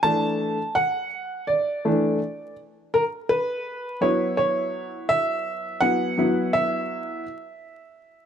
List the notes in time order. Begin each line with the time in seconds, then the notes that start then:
0.03 E3 A3 D4 A5
0.75 F#5
1.47 D5
1.85 E3 A3 D4
2.94 A#4
3.29 B4
4.01 F#3 B3 E4 C#5
4.37 C#5
5.09 E5
5.80 F#3 B3 E4 F#5
6.17 F#3 B3 E4
6.53 E5